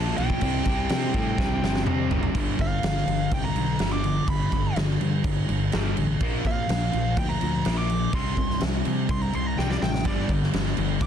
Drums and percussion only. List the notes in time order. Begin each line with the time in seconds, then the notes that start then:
0.18 crash
0.30 kick
0.41 kick, crash
0.65 kick, crash
0.89 snare, crash
1.14 kick, crash
1.38 kick, snare
1.64 snare
1.75 snare
1.87 mid tom
2.11 floor tom
2.23 floor tom
2.35 kick, crash
2.59 kick, crash
2.83 snare, crash
2.97 snare
3.08 crash
3.32 kick, crash
3.56 crash
3.79 snare, crash
4.04 crash
4.27 kick, crash
4.52 kick, crash
4.76 snare, crash
4.90 snare
5.01 crash
5.24 kick, crash
5.49 crash
5.72 snare, crash
5.97 crash
6.21 kick, crash
6.45 kick, crash
6.69 snare, crash
6.93 crash
7.17 kick, crash
7.41 crash
7.65 snare, crash
7.90 crash
8.13 kick, crash
8.37 kick, crash
8.50 snare
8.61 snare, crash
8.85 crash
9.09 kick, crash
9.33 crash
9.59 snare
9.71 snare
9.82 snare
9.94 snare
10.05 kick, crash
10.29 kick, crash
10.43 snare
10.53 snare, crash
10.67 snare
10.77 crash
11.01 kick, crash